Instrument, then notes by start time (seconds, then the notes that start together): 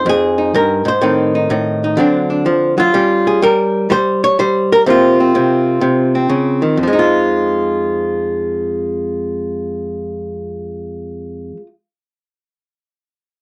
hollow-body jazz guitar
Already playing: G#3 C4 D#4
0.06 F2 G#4
0.38 D#4
0.55 G2 A#4
0.85 G#2 C5
1.01 A2 D#3 C4 D#4
1.35 D#4
1.50 A2 D#4
1.84 D#4
1.97 D3 F#3 C4 D4
2.30 D4
2.46 F3
2.78 F#3 F4
2.94 G3 C#4
3.27 G#4
3.42 G3 A#4
3.90 G3 C5
4.24 C#5
4.39 G3 C5
4.72 A#4
4.86 C3 F3 A#3 C4 F4
5.20 C4
5.35 C3 C4
5.81 C3
6.15 C4
6.30 C#3
6.62 D#3
6.77 F2
6.83 F3
6.88 G#3
6.93 D#4
6.99 F4